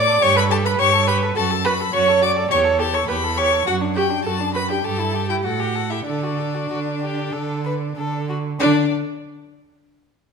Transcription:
Already playing: A2 D5 D6
0.08 A4
0.22 G2 G4 C#5 C#6
0.36 A4 B4 B5
0.50 G4 A4 A5
0.64 A4 B4 B5
0.78 G2 G4 C#5 C#6
0.94 A4
1.07 G4 B4 B5
1.23 A4
1.36 F#2 F#4 A4 A5
1.51 A4
1.65 F#4 B4 B5
1.80 A4
1.93 F#2 F#4 C#5 C#6
2.08 A4
2.22 F#4 D5 D6
2.36 A4
2.51 E2 G4 C#5 C#6
2.65 A4
2.79 G4 A4 A5
2.93 A4 C#5 C#6
3.08 E2 G4 B4 B5
3.24 A4
3.37 G4 C#5 C#6
3.53 A4
3.66 F#2 F#4 F#5
3.82 D4
3.96 F#4 G4 G5
4.10 D4
4.25 F#2 F#4 A4 A5
4.41 D4
4.55 F#4 B4 B5
4.70 D4 G4 G5
4.84 G2 G4 A4 A5
5.00 E4
5.14 G4
5.29 E4 G4 G5
5.44 A2 F#4 A4 F#5
5.60 G4
5.76 A4
5.90 E4 G4 E5
6.06 D3 D4 A4 D5
6.23 F#4
6.39 A4
6.54 F#4
6.70 D3 F#4
7.02 G4
7.33 D3 A4
7.65 B4
7.96 D3 A4
8.29 F#4
8.60 D3 D4 D5

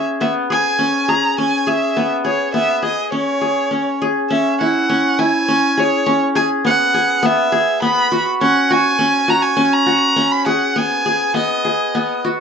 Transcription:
Already playing: C#4 G#4
0.21 B3 E5
0.50 G#4 G#5
0.79 C#4
1.08 G#4 A#5
1.38 C#4 G#5
1.67 G#4 E5
1.97 B3
2.25 G#4 C#5
2.54 B3 E5
2.82 G#4 D#5
3.12 C#4 C#5
3.41 G#4
3.71 C#4
4.02 G#4
4.30 C#4 E5
4.61 E4 F#5
4.90 C#4
5.19 E4 G#5
5.48 C#4
5.77 G#4 C#5
6.06 C#4
6.35 G#4 G#5
6.65 B3 F#5
6.94 G#4
7.23 B3 E5
7.52 G#4
7.82 B3 B5
8.12 F#4
8.41 C#4 F#5
8.71 F#4 G#5
8.99 C#4
9.28 F#4 A#5
9.42 G#5
9.57 C#4
9.73 A#5
9.86 F#4
10.16 C#4
10.32 B5
10.46 G#4 F#5
10.76 B3 G#5
11.06 G#4
11.34 B3 D#5
11.65 G#4
11.95 B3
12.25 F#4

